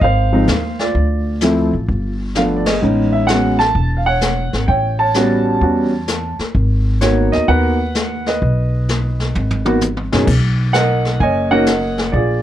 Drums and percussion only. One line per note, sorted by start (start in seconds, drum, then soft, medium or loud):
0.02 brush sweep soft
0.02 kick soft
0.48 snare soft
0.48 hi-hat pedal soft
0.79 snare soft
0.95 brush sweep soft
0.95 kick soft
1.41 snare soft
1.41 hi-hat pedal medium
1.88 brush sweep soft
1.88 kick soft
2.35 snare medium
2.35 hi-hat pedal soft
2.66 snare medium
2.66 ride medium
2.82 brush sweep soft
3.28 snare soft
3.28 hi-hat pedal medium
3.60 snare soft
3.75 brush sweep soft
3.75 kick soft
4.21 snare medium
4.21 hi-hat pedal medium
4.53 snare soft
4.68 brush sweep soft
4.68 kick soft
5.14 snare soft
5.14 hi-hat pedal medium
5.61 brush sweep soft
5.61 kick soft
6.08 snare medium
6.08 hi-hat pedal medium
6.39 snare soft
6.55 brush sweep soft
6.55 kick soft
7.01 snare soft
7.01 hi-hat pedal soft
7.33 snare soft
7.48 brush sweep soft
7.48 kick soft
7.95 snare medium
7.95 hi-hat pedal soft
8.26 snare soft
8.42 brush sweep soft
8.42 kick soft
8.88 snare soft
8.88 hi-hat pedal soft
9.20 snare soft
9.35 floor tom soft
9.51 floor tom soft
9.66 mid tom medium
9.81 hi-hat pedal medium
9.81 mid tom medium
9.97 mid tom medium
10.13 snare medium
10.28 brush sweep soft
10.28 kick medium
10.28 crash medium
10.74 snare medium
10.74 hi-hat pedal soft
11.05 snare soft
11.20 brush sweep soft
11.20 kick soft
11.66 snare medium
11.66 hi-hat pedal medium
11.98 snare soft
12.13 brush sweep soft
12.13 kick soft